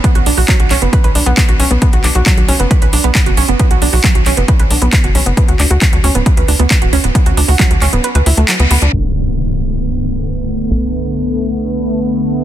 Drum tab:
HH |xxooxxoxxxoxxxox|xxoxxxoxxxoxxxox|xxooxxoxxxoxxxox|xxoxxxoxxxoxxxox|
CP |----x-x-----x---|--x-x-------x---|----x-x-----x---|--x-x-------x---|
BD |o---o---o---o---|o---o---o---o---|o---o---o---o---|o---o---o---o---|

HH |xxooxxoxxxoxxxox|----------------|----------------|
CP |----x-x-----x---|----------------|----------------|
BD |o---o-----------|----------------|----------------|